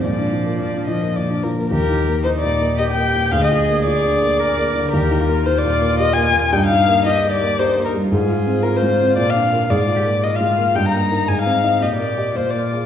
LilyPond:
<<
  \new Staff \with { instrumentName = "Violin" } { \time 3/4 \key ees \major \tempo 4 = 112 d''4 d''8 ees''8 d''8 bes'8 | bes'4 c''16 d''8. ees''16 g''8. | f''16 ees''8. d''2 | bes'4 c''16 d''8. ees''16 aes''8. |
g''16 f''8. ees''8 d''8 c''8 bes'8 | aes'4 bes'16 c''8. d''16 f''8. | d''4 ees''16 f''8. g''16 bes''8. | aes''16 f''8. ees''16 d''8. c''16 d''8. | }
  \new Staff \with { instrumentName = "Cello" } { \time 3/4 \key ees \major f2~ f8 r8 | g'4 ees'4 g'4 | aes'2 bes'4 | g'8 f'2~ f'8 |
ees'4 g'4 ees'4 | f'2. | aes'8 g'8 f'4 ees'4~ | ees'4 g'4 f'4 | }
  \new Staff \with { instrumentName = "Grand piano" } { \time 3/4 \key ees \major bes,16 d'16 f16 bes16 bes,16 d'16 f16 bes16 bes,16 d'16 f16 bes16 | \tuplet 3/2 { ees,8 ees'8 bes8 ees'8 bes,8 bes8 g'8 bes8 bes,8 } | \tuplet 3/2 { d,8 f'8 bes8 f'8 d8 bes8 aes'8 bes8 d8 } | \tuplet 3/2 { ees,8 ees'8 bes8 ees'8 bes,8 bes8 g'8 bes8 bes,8 } |
\tuplet 3/2 { g,8 ees'8 bes8 ees'8 g8 bes8 g'8 bes8 g8 } | \tuplet 3/2 { aes,8 f'8 c'8 f'8 aes8 c'8 bes,8 d'8 <f' bes'>8 } | \tuplet 3/2 { aes,8 f'8 bes8 f'8 aes8 bes8 g,8 bes8 <ees' bes'>8 } | \tuplet 3/2 { aes,8 c'8 <ees' ees''>8 bes,8 bes8 <g' ees''>8 bes,8 bes8 <aes' f''>8 } | }
>>